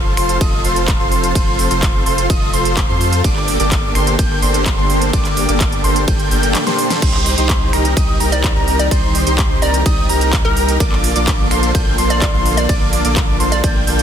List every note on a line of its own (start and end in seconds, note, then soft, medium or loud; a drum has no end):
0.00 0.15 F1 medium
0.00 3.21 C3 medium
0.00 3.21 F3 medium
0.00 0.14 F4 medium
0.00 3.20 F4 medium
0.00 0.14 A4 medium
0.00 6.98 A4 medium
0.00 0.14 C5 loud
0.00 0.14 C6 loud
0.17 0.38 F1 loud
0.17 0.37 F4 medium
0.17 0.37 A4 medium
0.17 0.37 C5 medium
0.17 0.37 C6 loud
0.17 finger snap medium
0.17 open hi-hat loud
0.29 closed hi-hat medium
0.41 0.62 F1 medium
0.41 0.62 F4 medium
0.41 0.62 A4 medium
0.41 0.62 D#5 loud
0.41 0.62 D#6 loud
0.41 kick loud
0.41 closed hi-hat medium
0.41 ride medium
0.64 0.98 F1 loud
0.64 0.97 F4 medium
0.64 0.97 A4 medium
0.64 0.97 C5 medium
0.64 0.97 C6 medium
0.64 open hi-hat loud
0.76 closed hi-hat medium
0.88 kick loud
0.88 clap loud
0.88 closed hi-hat medium
0.88 ride medium
1.00 1.33 F1 loud
1.00 1.33 F4 loud
1.00 1.33 A4 medium
1.00 1.33 C5 loud
1.00 1.32 C6 loud
1.12 open hi-hat medium
1.24 closed hi-hat medium
1.35 1.68 F1 loud
1.35 1.68 F4 medium
1.35 1.68 A4 medium
1.35 1.68 C5 loud
1.35 1.68 C6 loud
1.35 kick loud
1.35 closed hi-hat medium
1.35 ride medium
1.59 open hi-hat loud
1.71 2.04 F1 medium
1.71 2.03 F4 medium
1.71 2.03 A4 medium
1.71 2.03 C5 medium
1.71 2.03 C6 loud
1.71 closed hi-hat medium
1.83 kick loud
1.83 clap loud
1.83 closed hi-hat medium
1.83 ride medium
2.06 2.27 F1 loud
2.06 2.26 F4 medium
2.06 2.26 A4 medium
2.06 2.26 C5 medium
2.06 2.26 C6 loud
2.06 open hi-hat medium
2.18 closed hi-hat medium
2.30 2.51 F1 loud
2.30 2.51 F4 medium
2.30 2.51 A4 medium
2.30 2.51 D#5 loud
2.30 2.51 D#6 loud
2.30 kick loud
2.30 closed hi-hat medium
2.30 ride medium
2.53 2.87 F1 medium
2.53 2.86 F4 medium
2.53 2.86 A4 medium
2.53 2.86 C5 medium
2.53 2.86 C6 medium
2.53 open hi-hat loud
2.65 closed hi-hat medium
2.77 kick loud
2.77 clap loud
2.77 closed hi-hat medium
2.77 ride medium
2.89 3.22 F2 loud
2.89 3.22 F4 medium
2.89 3.22 A4 medium
2.89 3.22 C5 loud
2.89 3.22 C6 loud
3.01 open hi-hat medium
3.13 closed hi-hat medium
3.24 3.57 G1 loud
3.24 6.99 D3 medium
3.24 3.57 A#3 medium
3.24 6.99 A#3 medium
3.24 3.57 D4 medium
3.24 3.57 G4 medium
3.24 6.99 G4 medium
3.24 3.57 A4 medium
3.24 3.57 D5 loud
3.24 3.57 D6 medium
3.24 kick loud
3.24 closed hi-hat medium
3.24 ride medium
3.36 clap soft
3.48 open hi-hat loud
3.60 3.93 G1 loud
3.60 3.92 A#3 medium
3.60 3.92 D4 medium
3.60 3.92 G4 medium
3.60 3.92 A4 medium
3.60 3.92 D5 loud
3.60 3.92 D6 loud
3.60 closed hi-hat medium
3.72 kick loud
3.72 clap loud
3.72 closed hi-hat medium
3.72 ride medium
3.95 4.16 G1 loud
3.95 4.15 A#3 medium
3.95 4.15 D4 medium
3.95 4.15 G4 medium
3.95 4.15 A4 medium
3.95 4.15 C5 medium
3.95 4.15 C6 loud
3.95 finger snap medium
3.95 open hi-hat loud
4.07 closed hi-hat medium
4.19 4.40 G1 loud
4.19 4.40 A#3 medium
4.19 4.40 D4 medium
4.19 4.40 G4 medium
4.19 4.40 A4 medium
4.19 4.40 G5 loud
4.19 4.40 G6 loud
4.19 kick loud
4.19 closed hi-hat medium
4.19 ride medium
4.42 4.76 G1 loud
4.42 4.75 A#3 medium
4.42 4.75 D4 medium
4.42 4.75 G4 medium
4.42 4.75 A4 medium
4.42 4.75 C5 medium
4.42 4.75 C6 medium
4.42 open hi-hat loud
4.54 closed hi-hat medium
4.66 kick loud
4.66 clap loud
4.66 closed hi-hat medium
4.66 ride medium
4.78 5.11 G1 loud
4.78 5.11 A#3 medium
4.78 5.11 D4 medium
4.78 5.11 G4 medium
4.78 5.11 A4 medium
4.78 5.11 C5 loud
4.78 5.10 C6 medium
4.90 open hi-hat medium
5.02 closed hi-hat medium
5.13 5.46 G1 loud
5.13 5.46 A#3 medium
5.13 5.46 D4 medium
5.13 5.46 G4 medium
5.13 5.46 A4 medium
5.13 5.46 D5 loud
5.13 5.46 D6 medium
5.13 kick loud
5.13 closed hi-hat medium
5.13 ride medium
5.25 clap soft
5.25 closed hi-hat soft
5.37 open hi-hat loud
5.49 5.82 G1 loud
5.49 5.81 A#3 medium
5.49 5.81 D4 medium
5.49 5.81 G4 medium
5.49 5.81 A4 medium
5.49 5.81 D5 loud
5.49 5.81 D6 loud
5.49 closed hi-hat medium
5.61 kick loud
5.61 clap loud
5.61 closed hi-hat medium
5.61 ride medium
5.72 closed hi-hat soft
5.84 6.05 G1 loud
5.84 6.04 A#3 medium
5.84 6.04 D4 medium
5.84 6.04 G4 medium
5.84 6.04 A4 medium
5.84 6.04 C5 loud
5.84 6.04 C6 loud
5.84 open hi-hat medium
5.96 closed hi-hat medium
6.08 6.29 G1 loud
6.08 6.29 A#3 medium
6.08 6.29 D4 medium
6.08 6.29 G4 medium
6.08 6.29 A4 medium
6.08 6.29 G5 loud
6.08 6.29 G6 loud
6.08 kick loud
6.08 closed hi-hat medium
6.08 ride medium
6.19 closed hi-hat soft
6.31 6.55 G1 loud
6.31 6.64 A#3 medium
6.31 6.64 D4 medium
6.31 6.64 G4 medium
6.31 6.64 A4 medium
6.31 6.64 G5 loud
6.31 6.64 G6 medium
6.31 open hi-hat loud
6.43 closed hi-hat medium
6.55 snare medium
6.55 clap loud
6.55 closed hi-hat medium
6.55 ride medium
6.67 7.00 A#3 medium
6.67 6.99 D4 medium
6.67 6.99 G4 medium
6.67 7.00 A4 medium
6.67 6.99 C5 loud
6.67 6.99 C6 medium
6.67 snare medium
6.67 closed hi-hat soft
6.79 open hi-hat medium
6.90 snare medium
6.90 closed hi-hat medium
7.02 7.35 C2 loud
7.02 10.77 D#3 medium
7.02 10.77 G3 medium
7.02 10.77 C4 medium
7.02 7.35 D#4 medium
7.02 7.35 G4 medium
7.02 10.77 G4 medium
7.02 7.35 C5 loud
7.02 7.35 C6 medium
7.02 kick loud
7.02 closed hi-hat medium
7.02 ride medium
7.02 crash medium
7.14 clap soft
7.26 open hi-hat loud
7.38 7.71 C2 loud
7.38 7.70 D#4 medium
7.38 7.70 G4 medium
7.38 7.70 C5 loud
7.38 7.70 C6 loud
7.38 closed hi-hat medium
7.50 kick loud
7.50 clap loud
7.50 closed hi-hat medium
7.50 ride medium
7.73 7.94 C2 loud
7.73 7.93 D#4 medium
7.73 7.93 G4 medium
7.73 7.93 A#4 medium
7.73 7.93 A#5 medium
7.73 finger snap medium
7.73 open hi-hat medium
7.85 closed hi-hat medium
7.97 8.18 C2 loud
7.97 8.18 D#4 loud
7.97 8.18 G4 medium
7.97 8.18 D#5 loud
7.97 8.18 D#6 loud
7.97 kick loud
7.97 closed hi-hat medium
7.97 ride medium
8.20 8.53 C2 loud
8.20 8.53 D#4 medium
8.20 8.53 G4 medium
8.20 8.53 A#4 medium
8.20 8.53 A#5 medium
8.20 open hi-hat loud
8.32 8.46 D5 medium
8.32 closed hi-hat medium
8.44 kick loud
8.44 clap loud
8.44 closed hi-hat medium
8.44 ride medium
8.56 8.89 C2 loud
8.56 8.88 D#4 loud
8.56 8.88 G4 medium
8.56 8.88 A#4 loud
8.56 8.88 A#5 loud
8.68 open hi-hat medium
8.79 8.94 D5 medium
8.79 closed hi-hat medium
8.91 9.24 C2 loud
8.91 9.24 D#4 medium
8.91 9.24 G4 medium
8.91 9.24 C5 loud
8.91 9.24 C6 loud
8.91 kick loud
8.91 closed hi-hat medium
8.91 ride medium
9.15 open hi-hat loud
9.27 9.60 C2 loud
9.27 9.59 D#4 medium
9.27 9.59 G4 medium
9.27 9.59 C5 loud
9.27 9.59 C6 loud
9.27 closed hi-hat medium
9.38 kick loud
9.38 clap loud
9.38 closed hi-hat medium
9.38 ride medium
9.62 9.83 C2 loud
9.62 9.82 D#4 medium
9.62 9.82 G4 medium
9.62 9.82 A#4 loud
9.62 9.76 D5 medium
9.62 9.82 A#5 loud
9.62 open hi-hat loud
9.74 closed hi-hat medium
9.86 10.07 C2 medium
9.86 10.07 D#4 medium
9.86 10.07 G4 medium
9.86 10.07 D#5 loud
9.86 10.07 D#6 loud
9.86 kick loud
9.86 closed hi-hat medium
9.86 ride medium
10.09 10.42 C2 loud
10.09 10.42 D#4 medium
10.09 10.42 G4 medium
10.09 10.42 A#4 medium
10.09 10.42 A#5 medium
10.09 open hi-hat loud
10.21 closed hi-hat medium
10.33 kick loud
10.33 clap loud
10.33 closed hi-hat medium
10.33 ride medium
10.45 10.78 C2 loud
10.45 10.77 D#4 medium
10.45 10.77 G4 medium
10.45 10.85 A#4 loud
10.45 10.77 A#4 loud
10.45 10.77 A#5 loud
10.57 open hi-hat medium
10.69 closed hi-hat medium
10.80 11.13 A#1 loud
10.80 14.03 D3 medium
10.80 14.03 A#3 medium
10.80 11.13 A#3 medium
10.80 11.13 D4 medium
10.80 11.13 F4 medium
10.80 14.03 F4 medium
10.80 11.13 A4 medium
10.80 14.03 A4 medium
10.80 11.13 D5 loud
10.80 11.13 D6 loud
10.80 kick loud
10.80 closed hi-hat medium
10.80 ride medium
10.92 clap soft
11.04 open hi-hat loud
11.16 11.49 A#1 medium
11.16 11.48 A#3 medium
11.16 11.48 D4 medium
11.16 11.48 F4 medium
11.16 11.48 A4 medium
11.16 11.48 D5 loud
11.16 11.48 D6 loud
11.16 closed hi-hat medium
11.28 kick loud
11.28 clap loud
11.28 closed hi-hat medium
11.28 ride medium
11.51 11.72 A#1 loud
11.51 11.71 A#3 medium
11.51 11.71 D4 medium
11.51 11.71 F4 medium
11.51 11.71 A4 medium
11.51 11.71 C5 medium
11.51 11.71 C6 loud
11.51 finger snap medium
11.51 open hi-hat loud
11.63 closed hi-hat medium
11.75 11.96 A#1 medium
11.75 11.96 A#3 medium
11.75 11.96 D4 medium
11.75 11.96 F4 medium
11.75 11.96 A4 medium
11.75 11.96 G5 loud
11.75 11.96 G6 loud
11.75 kick loud
11.75 closed hi-hat medium
11.75 ride medium
11.98 12.31 A#1 loud
11.98 12.31 A#3 medium
11.98 12.31 D4 medium
11.98 12.31 F4 medium
11.98 12.31 A4 medium
11.98 12.31 C5 medium
11.98 12.31 C6 medium
11.98 open hi-hat loud
12.10 12.24 D5 medium
12.10 closed hi-hat medium
12.22 kick loud
12.22 clap loud
12.22 closed hi-hat medium
12.22 ride medium
12.34 12.67 A#1 loud
12.34 12.66 A#3 loud
12.34 12.66 D4 medium
12.34 12.66 F4 medium
12.34 12.66 A4 medium
12.34 12.66 C5 loud
12.34 12.66 C6 loud
12.46 open hi-hat loud
12.57 12.72 D5 medium
12.57 closed hi-hat medium
12.69 13.02 A#1 loud
12.69 13.02 A#3 medium
12.69 13.02 D4 medium
12.69 13.02 F4 medium
12.69 13.02 A4 medium
12.69 13.02 D5 medium
12.69 13.02 D6 loud
12.69 kick loud
12.69 closed hi-hat medium
12.69 ride medium
12.93 open hi-hat loud
13.05 13.38 A#1 medium
13.05 13.37 A#3 medium
13.05 13.37 D4 medium
13.05 13.37 F4 medium
13.05 13.37 A4 medium
13.05 13.37 D5 loud
13.05 13.37 D6 medium
13.05 closed hi-hat medium
13.16 kick loud
13.16 clap loud
13.16 closed hi-hat medium
13.16 ride medium
13.40 13.61 A#1 loud
13.40 13.60 A#3 medium
13.40 13.60 D4 medium
13.40 13.60 F4 medium
13.40 13.60 A4 medium
13.40 13.60 C5 medium
13.40 13.60 C6 loud
13.40 open hi-hat medium
13.52 13.99 D5 medium
13.52 closed hi-hat medium
13.64 13.85 A#1 medium
13.64 13.85 A#3 medium
13.64 13.85 D4 medium
13.64 13.85 F4 medium
13.64 13.85 A4 medium
13.64 13.85 G5 loud
13.64 13.84 G6 loud
13.64 kick loud
13.64 closed hi-hat medium
13.64 ride medium
13.87 14.03 A#1 loud
13.87 14.03 A#3 medium
13.87 14.03 D4 medium
13.87 14.03 F4 medium
13.87 14.03 A4 medium
13.87 14.03 G5 loud
13.87 14.03 G6 loud
13.87 open hi-hat loud
13.99 closed hi-hat medium